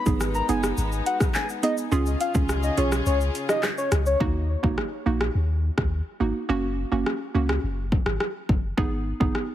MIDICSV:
0, 0, Header, 1, 6, 480
1, 0, Start_track
1, 0, Key_signature, -6, "minor"
1, 0, Tempo, 571429
1, 1613, Time_signature, 4, 2, 24, 8
1, 8021, End_track
2, 0, Start_track
2, 0, Title_t, "Soft synth lead"
2, 0, Program_c, 0, 80
2, 292, Note_on_c, 0, 82, 85
2, 394, Note_off_c, 0, 82, 0
2, 412, Note_on_c, 0, 80, 81
2, 515, Note_off_c, 0, 80, 0
2, 892, Note_on_c, 0, 78, 76
2, 994, Note_off_c, 0, 78, 0
2, 1132, Note_on_c, 0, 80, 77
2, 1234, Note_off_c, 0, 80, 0
2, 1372, Note_on_c, 0, 75, 80
2, 1474, Note_off_c, 0, 75, 0
2, 1853, Note_on_c, 0, 77, 79
2, 1955, Note_off_c, 0, 77, 0
2, 2213, Note_on_c, 0, 75, 75
2, 2315, Note_off_c, 0, 75, 0
2, 2333, Note_on_c, 0, 73, 78
2, 2435, Note_off_c, 0, 73, 0
2, 2573, Note_on_c, 0, 73, 89
2, 2675, Note_off_c, 0, 73, 0
2, 2934, Note_on_c, 0, 75, 80
2, 3035, Note_off_c, 0, 75, 0
2, 3174, Note_on_c, 0, 73, 84
2, 3275, Note_off_c, 0, 73, 0
2, 3413, Note_on_c, 0, 73, 79
2, 3515, Note_off_c, 0, 73, 0
2, 8021, End_track
3, 0, Start_track
3, 0, Title_t, "Synth pluck"
3, 0, Program_c, 1, 84
3, 50, Note_on_c, 1, 59, 76
3, 52, Note_on_c, 1, 63, 73
3, 55, Note_on_c, 1, 68, 86
3, 195, Note_off_c, 1, 59, 0
3, 196, Note_off_c, 1, 63, 0
3, 198, Note_off_c, 1, 68, 0
3, 410, Note_on_c, 1, 59, 82
3, 412, Note_on_c, 1, 63, 76
3, 415, Note_on_c, 1, 68, 90
3, 555, Note_off_c, 1, 59, 0
3, 556, Note_off_c, 1, 63, 0
3, 558, Note_off_c, 1, 68, 0
3, 1370, Note_on_c, 1, 59, 80
3, 1372, Note_on_c, 1, 63, 69
3, 1374, Note_on_c, 1, 68, 82
3, 1515, Note_off_c, 1, 59, 0
3, 1516, Note_off_c, 1, 63, 0
3, 1517, Note_off_c, 1, 68, 0
3, 1610, Note_on_c, 1, 61, 96
3, 1612, Note_on_c, 1, 65, 91
3, 1615, Note_on_c, 1, 68, 111
3, 1755, Note_off_c, 1, 61, 0
3, 1756, Note_off_c, 1, 65, 0
3, 1758, Note_off_c, 1, 68, 0
3, 1970, Note_on_c, 1, 61, 75
3, 1972, Note_on_c, 1, 65, 69
3, 1975, Note_on_c, 1, 68, 85
3, 2115, Note_off_c, 1, 61, 0
3, 2116, Note_off_c, 1, 65, 0
3, 2118, Note_off_c, 1, 68, 0
3, 2330, Note_on_c, 1, 61, 83
3, 2333, Note_on_c, 1, 65, 75
3, 2335, Note_on_c, 1, 68, 93
3, 2475, Note_off_c, 1, 61, 0
3, 2477, Note_off_c, 1, 65, 0
3, 2478, Note_off_c, 1, 68, 0
3, 3530, Note_on_c, 1, 58, 97
3, 3532, Note_on_c, 1, 63, 87
3, 3535, Note_on_c, 1, 66, 104
3, 3675, Note_off_c, 1, 58, 0
3, 3676, Note_off_c, 1, 63, 0
3, 3678, Note_off_c, 1, 66, 0
3, 3890, Note_on_c, 1, 58, 75
3, 3892, Note_on_c, 1, 63, 70
3, 3894, Note_on_c, 1, 66, 84
3, 4035, Note_off_c, 1, 58, 0
3, 4036, Note_off_c, 1, 63, 0
3, 4037, Note_off_c, 1, 66, 0
3, 4250, Note_on_c, 1, 58, 80
3, 4253, Note_on_c, 1, 63, 72
3, 4255, Note_on_c, 1, 66, 88
3, 4395, Note_off_c, 1, 58, 0
3, 4397, Note_off_c, 1, 63, 0
3, 4398, Note_off_c, 1, 66, 0
3, 5210, Note_on_c, 1, 58, 75
3, 5212, Note_on_c, 1, 63, 68
3, 5214, Note_on_c, 1, 66, 83
3, 5355, Note_off_c, 1, 58, 0
3, 5356, Note_off_c, 1, 63, 0
3, 5357, Note_off_c, 1, 66, 0
3, 5450, Note_on_c, 1, 58, 94
3, 5453, Note_on_c, 1, 61, 85
3, 5455, Note_on_c, 1, 66, 108
3, 5595, Note_off_c, 1, 58, 0
3, 5597, Note_off_c, 1, 61, 0
3, 5598, Note_off_c, 1, 66, 0
3, 5810, Note_on_c, 1, 58, 76
3, 5813, Note_on_c, 1, 61, 70
3, 5815, Note_on_c, 1, 66, 88
3, 5955, Note_off_c, 1, 58, 0
3, 5957, Note_off_c, 1, 61, 0
3, 5958, Note_off_c, 1, 66, 0
3, 6170, Note_on_c, 1, 58, 82
3, 6173, Note_on_c, 1, 61, 77
3, 6175, Note_on_c, 1, 66, 89
3, 6315, Note_off_c, 1, 58, 0
3, 6317, Note_off_c, 1, 61, 0
3, 6318, Note_off_c, 1, 66, 0
3, 7370, Note_on_c, 1, 59, 94
3, 7373, Note_on_c, 1, 63, 91
3, 7375, Note_on_c, 1, 68, 102
3, 7515, Note_off_c, 1, 59, 0
3, 7516, Note_off_c, 1, 63, 0
3, 7518, Note_off_c, 1, 68, 0
3, 7730, Note_on_c, 1, 59, 80
3, 7733, Note_on_c, 1, 63, 71
3, 7735, Note_on_c, 1, 68, 81
3, 7875, Note_off_c, 1, 59, 0
3, 7877, Note_off_c, 1, 63, 0
3, 7878, Note_off_c, 1, 68, 0
3, 8021, End_track
4, 0, Start_track
4, 0, Title_t, "String section"
4, 0, Program_c, 2, 48
4, 0, Note_on_c, 2, 56, 83
4, 0, Note_on_c, 2, 59, 72
4, 0, Note_on_c, 2, 63, 87
4, 1594, Note_off_c, 2, 56, 0
4, 1594, Note_off_c, 2, 59, 0
4, 1594, Note_off_c, 2, 63, 0
4, 1613, Note_on_c, 2, 49, 80
4, 1613, Note_on_c, 2, 61, 70
4, 1613, Note_on_c, 2, 65, 73
4, 1613, Note_on_c, 2, 68, 89
4, 3513, Note_off_c, 2, 49, 0
4, 3513, Note_off_c, 2, 61, 0
4, 3514, Note_off_c, 2, 65, 0
4, 3514, Note_off_c, 2, 68, 0
4, 8021, End_track
5, 0, Start_track
5, 0, Title_t, "Sub bass"
5, 0, Program_c, 3, 38
5, 54, Note_on_c, 3, 32, 95
5, 348, Note_off_c, 3, 32, 0
5, 412, Note_on_c, 3, 30, 85
5, 609, Note_off_c, 3, 30, 0
5, 652, Note_on_c, 3, 32, 111
5, 849, Note_off_c, 3, 32, 0
5, 1612, Note_on_c, 3, 37, 117
5, 1809, Note_off_c, 3, 37, 0
5, 1974, Note_on_c, 3, 37, 94
5, 2268, Note_off_c, 3, 37, 0
5, 2332, Note_on_c, 3, 35, 92
5, 2528, Note_off_c, 3, 35, 0
5, 2572, Note_on_c, 3, 37, 111
5, 2768, Note_off_c, 3, 37, 0
5, 3293, Note_on_c, 3, 37, 95
5, 3489, Note_off_c, 3, 37, 0
5, 3533, Note_on_c, 3, 39, 106
5, 3827, Note_off_c, 3, 39, 0
5, 3894, Note_on_c, 3, 35, 89
5, 3992, Note_off_c, 3, 35, 0
5, 4253, Note_on_c, 3, 34, 86
5, 4449, Note_off_c, 3, 34, 0
5, 4493, Note_on_c, 3, 39, 93
5, 4787, Note_off_c, 3, 39, 0
5, 4854, Note_on_c, 3, 39, 89
5, 5049, Note_off_c, 3, 39, 0
5, 5213, Note_on_c, 3, 32, 93
5, 5311, Note_off_c, 3, 32, 0
5, 5453, Note_on_c, 3, 30, 116
5, 5747, Note_off_c, 3, 30, 0
5, 5812, Note_on_c, 3, 30, 99
5, 5911, Note_off_c, 3, 30, 0
5, 6172, Note_on_c, 3, 37, 87
5, 6369, Note_off_c, 3, 37, 0
5, 6412, Note_on_c, 3, 30, 90
5, 6707, Note_off_c, 3, 30, 0
5, 6772, Note_on_c, 3, 32, 89
5, 6870, Note_off_c, 3, 32, 0
5, 7133, Note_on_c, 3, 30, 93
5, 7329, Note_off_c, 3, 30, 0
5, 7373, Note_on_c, 3, 32, 109
5, 7667, Note_off_c, 3, 32, 0
5, 7734, Note_on_c, 3, 32, 88
5, 7832, Note_off_c, 3, 32, 0
5, 8021, End_track
6, 0, Start_track
6, 0, Title_t, "Drums"
6, 51, Note_on_c, 9, 82, 81
6, 54, Note_on_c, 9, 36, 102
6, 135, Note_off_c, 9, 82, 0
6, 138, Note_off_c, 9, 36, 0
6, 172, Note_on_c, 9, 82, 83
6, 173, Note_on_c, 9, 37, 90
6, 256, Note_off_c, 9, 82, 0
6, 257, Note_off_c, 9, 37, 0
6, 290, Note_on_c, 9, 82, 52
6, 374, Note_off_c, 9, 82, 0
6, 411, Note_on_c, 9, 42, 76
6, 411, Note_on_c, 9, 82, 56
6, 495, Note_off_c, 9, 42, 0
6, 495, Note_off_c, 9, 82, 0
6, 532, Note_on_c, 9, 82, 83
6, 533, Note_on_c, 9, 37, 103
6, 616, Note_off_c, 9, 82, 0
6, 617, Note_off_c, 9, 37, 0
6, 651, Note_on_c, 9, 82, 76
6, 735, Note_off_c, 9, 82, 0
6, 775, Note_on_c, 9, 82, 53
6, 859, Note_off_c, 9, 82, 0
6, 894, Note_on_c, 9, 42, 70
6, 894, Note_on_c, 9, 82, 51
6, 978, Note_off_c, 9, 42, 0
6, 978, Note_off_c, 9, 82, 0
6, 1011, Note_on_c, 9, 37, 95
6, 1013, Note_on_c, 9, 36, 99
6, 1014, Note_on_c, 9, 82, 65
6, 1095, Note_off_c, 9, 37, 0
6, 1097, Note_off_c, 9, 36, 0
6, 1098, Note_off_c, 9, 82, 0
6, 1131, Note_on_c, 9, 39, 89
6, 1132, Note_on_c, 9, 82, 67
6, 1215, Note_off_c, 9, 39, 0
6, 1216, Note_off_c, 9, 82, 0
6, 1254, Note_on_c, 9, 82, 59
6, 1338, Note_off_c, 9, 82, 0
6, 1371, Note_on_c, 9, 42, 90
6, 1371, Note_on_c, 9, 82, 64
6, 1455, Note_off_c, 9, 42, 0
6, 1455, Note_off_c, 9, 82, 0
6, 1491, Note_on_c, 9, 82, 80
6, 1575, Note_off_c, 9, 82, 0
6, 1612, Note_on_c, 9, 82, 68
6, 1696, Note_off_c, 9, 82, 0
6, 1731, Note_on_c, 9, 82, 48
6, 1815, Note_off_c, 9, 82, 0
6, 1852, Note_on_c, 9, 42, 72
6, 1852, Note_on_c, 9, 82, 50
6, 1936, Note_off_c, 9, 42, 0
6, 1936, Note_off_c, 9, 82, 0
6, 1970, Note_on_c, 9, 82, 81
6, 1974, Note_on_c, 9, 36, 107
6, 2054, Note_off_c, 9, 82, 0
6, 2058, Note_off_c, 9, 36, 0
6, 2092, Note_on_c, 9, 82, 82
6, 2093, Note_on_c, 9, 37, 94
6, 2176, Note_off_c, 9, 82, 0
6, 2177, Note_off_c, 9, 37, 0
6, 2210, Note_on_c, 9, 82, 52
6, 2294, Note_off_c, 9, 82, 0
6, 2331, Note_on_c, 9, 42, 74
6, 2331, Note_on_c, 9, 82, 53
6, 2415, Note_off_c, 9, 42, 0
6, 2415, Note_off_c, 9, 82, 0
6, 2453, Note_on_c, 9, 37, 101
6, 2453, Note_on_c, 9, 82, 82
6, 2537, Note_off_c, 9, 37, 0
6, 2537, Note_off_c, 9, 82, 0
6, 2571, Note_on_c, 9, 82, 75
6, 2655, Note_off_c, 9, 82, 0
6, 2695, Note_on_c, 9, 82, 52
6, 2779, Note_off_c, 9, 82, 0
6, 2814, Note_on_c, 9, 42, 69
6, 2814, Note_on_c, 9, 82, 52
6, 2898, Note_off_c, 9, 42, 0
6, 2898, Note_off_c, 9, 82, 0
6, 2931, Note_on_c, 9, 37, 96
6, 2934, Note_on_c, 9, 82, 63
6, 3015, Note_off_c, 9, 37, 0
6, 3018, Note_off_c, 9, 82, 0
6, 3051, Note_on_c, 9, 37, 93
6, 3051, Note_on_c, 9, 39, 90
6, 3052, Note_on_c, 9, 82, 69
6, 3135, Note_off_c, 9, 37, 0
6, 3135, Note_off_c, 9, 39, 0
6, 3136, Note_off_c, 9, 82, 0
6, 3175, Note_on_c, 9, 82, 54
6, 3259, Note_off_c, 9, 82, 0
6, 3291, Note_on_c, 9, 37, 96
6, 3292, Note_on_c, 9, 42, 88
6, 3292, Note_on_c, 9, 82, 62
6, 3375, Note_off_c, 9, 37, 0
6, 3376, Note_off_c, 9, 42, 0
6, 3376, Note_off_c, 9, 82, 0
6, 3412, Note_on_c, 9, 82, 77
6, 3496, Note_off_c, 9, 82, 0
6, 3533, Note_on_c, 9, 36, 120
6, 3617, Note_off_c, 9, 36, 0
6, 3894, Note_on_c, 9, 36, 99
6, 3978, Note_off_c, 9, 36, 0
6, 4013, Note_on_c, 9, 37, 89
6, 4097, Note_off_c, 9, 37, 0
6, 4374, Note_on_c, 9, 37, 101
6, 4458, Note_off_c, 9, 37, 0
6, 4852, Note_on_c, 9, 37, 87
6, 4854, Note_on_c, 9, 36, 93
6, 4936, Note_off_c, 9, 37, 0
6, 4938, Note_off_c, 9, 36, 0
6, 5934, Note_on_c, 9, 37, 89
6, 6018, Note_off_c, 9, 37, 0
6, 6293, Note_on_c, 9, 37, 99
6, 6377, Note_off_c, 9, 37, 0
6, 6654, Note_on_c, 9, 36, 90
6, 6738, Note_off_c, 9, 36, 0
6, 6771, Note_on_c, 9, 37, 92
6, 6855, Note_off_c, 9, 37, 0
6, 6891, Note_on_c, 9, 37, 89
6, 6975, Note_off_c, 9, 37, 0
6, 7133, Note_on_c, 9, 36, 99
6, 7217, Note_off_c, 9, 36, 0
6, 7373, Note_on_c, 9, 36, 122
6, 7457, Note_off_c, 9, 36, 0
6, 7734, Note_on_c, 9, 36, 102
6, 7818, Note_off_c, 9, 36, 0
6, 7853, Note_on_c, 9, 37, 89
6, 7937, Note_off_c, 9, 37, 0
6, 8021, End_track
0, 0, End_of_file